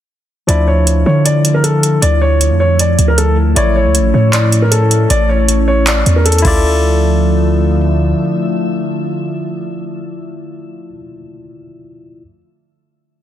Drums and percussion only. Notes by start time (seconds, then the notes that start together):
0.49 closed hi-hat
0.87 closed hi-hat
1.26 closed hi-hat
1.45 closed hi-hat
1.64 closed hi-hat
1.83 closed hi-hat
2.02 closed hi-hat
2.41 closed hi-hat
2.79 closed hi-hat
2.99 closed hi-hat
3.18 closed hi-hat
3.56 closed hi-hat
3.95 closed hi-hat
4.33 clap, closed hi-hat
4.52 closed hi-hat
4.72 closed hi-hat
4.91 closed hi-hat
5.10 closed hi-hat
5.49 closed hi-hat
5.87 clap, closed hi-hat
6.06 closed hi-hat
6.26 closed hi-hat
6.32 closed hi-hat
6.38 closed hi-hat
6.45 kick, crash